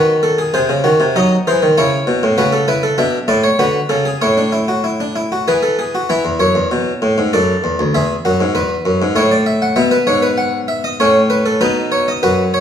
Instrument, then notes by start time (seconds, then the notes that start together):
harpsichord
Already playing: D#3 F#4 B4
0.23 A4
0.38 G#4
0.54 C3 G#4 C5
0.69 C#3
0.84 D#3 F#4
1.00 C3
1.16 F#3 D#4 D#5
1.47 E3 G#4 C5
1.62 D#3
1.78 C#3 E4 C#5
2.07 B2
2.23 A2
2.38 C#3 F#4 B4
2.52 A4
2.68 E4 B4
2.83 A4
2.98 B2 D4 E5
3.28 A2 E4 D5
3.44 C#5
3.59 D3 F#4 B4
3.89 C#3 A4
4.05 G#4
4.22 A2 E4 C#5
4.37 D4
4.52 E4
4.68 F#4
4.84 E4
5.00 D4
5.16 E4
5.32 F#4
5.48 E3 G#4 B4
5.63 A4
5.79 G#4
5.95 F#4
6.09 E3 E4 E5
6.25 E2
6.40 F#2 C#5
6.55 E2
6.71 B2
7.02 A2
7.18 G#2
7.33 F#2 A4 D5
7.64 E2
7.79 D2
7.94 E2 G#4 E5
8.25 F#2 F#4
8.41 G#2
8.55 E2 B4
8.85 F#2
9.02 G#2
9.16 A2 E4 C#5
9.31 D5
9.46 E5
9.62 F#5
9.76 B2 B3 E5
9.91 B4
10.07 G#2 C#5
10.22 B4
10.38 F#5
10.68 E5
10.84 D#5
11.00 A2 C#4 C#5
11.30 B4
11.46 A4
11.61 B2 D#4 B4
11.92 C#5
12.08 D#5
12.23 F#2 F#4 B4
12.54 C#5